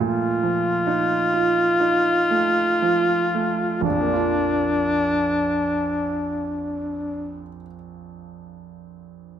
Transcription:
Already playing: grand piano F3 A3 D#4 F4
0.00 grand piano A#2, alto saxophone F4
0.43 grand piano F3
0.87 grand piano D#4
1.34 grand piano F4
1.80 grand piano D#4
2.31 grand piano A3
2.82 grand piano F3
3.34 grand piano A3
3.81 grand piano A#1, alto saxophone D4
3.88 grand piano F2
3.95 grand piano F3
4.01 grand piano A#3
4.07 grand piano D4
4.13 grand piano F4

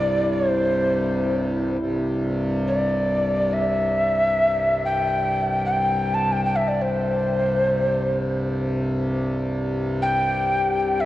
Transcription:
Already playing: harmonium C2 G2, glass harmonica E4, native american-style wooden flute D5
0.33 native american-style wooden flute C5
1.79 harmonium C2 G2
2.68 native american-style wooden flute D5
3.53 native american-style wooden flute E5
4.85 native american-style wooden flute G5
5.65 native american-style wooden flute G5
6.14 native american-style wooden flute A5
6.32 native american-style wooden flute G5
6.45 native american-style wooden flute G5
6.56 native american-style wooden flute E5
6.68 native american-style wooden flute D5
6.82 native american-style wooden flute C5
9.41 glass harmonica G4
10.02 native american-style wooden flute G5
11.01 native american-style wooden flute E5

